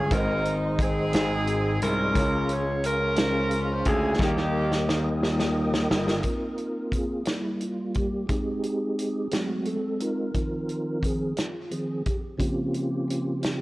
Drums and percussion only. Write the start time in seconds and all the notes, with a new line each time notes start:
0.11 kick, closed hi-hat
0.45 closed hi-hat
0.79 kick, closed hi-hat
1.13 snare, closed hi-hat
1.47 closed hi-hat
1.82 closed hi-hat
2.15 kick, closed hi-hat
2.49 closed hi-hat
2.84 closed hi-hat
3.16 snare, closed hi-hat
3.51 closed hi-hat
3.85 kick, closed hi-hat
4.19 kick, snare
4.37 snare
4.72 snare
4.89 snare
5.23 snare
5.40 snare
5.74 snare
5.91 snare
6.08 snare
6.23 kick, closed hi-hat
6.58 closed hi-hat
6.92 kick, closed hi-hat
7.25 snare, closed hi-hat
7.60 closed hi-hat
7.94 kick, closed hi-hat
8.29 kick, closed hi-hat
8.64 closed hi-hat
8.99 closed hi-hat
9.31 snare, closed hi-hat
9.65 closed hi-hat
10.00 closed hi-hat
10.34 kick, closed hi-hat
10.69 closed hi-hat
11.03 kick, closed hi-hat
11.37 snare, closed hi-hat
11.71 closed hi-hat
12.06 kick, closed hi-hat
12.40 kick, closed hi-hat
12.74 closed hi-hat
13.10 closed hi-hat
13.43 snare, closed hi-hat